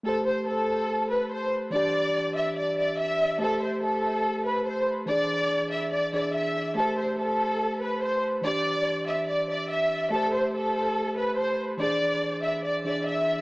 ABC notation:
X:1
M:4/4
L:1/8
Q:1/4=143
K:Am
V:1 name="Violin section"
A c A3 B c z | d3 e d d e2 | A c A3 B c z | d3 e d d e2 |
A c A3 B c z | d3 e d d e2 | A c A3 B c z | d3 e d d e2 |]
V:2 name="Tine electric piano"
[A,Gc]8 | [E,DG]8 | [A,Gc]8 | [E,D^G]4- [E,DG] [E,DG]3 |
[A,Gc]8 | [E,DG]8 | [A,Gc]8 | [E,D^G]4- [E,DG] [E,DG]3 |]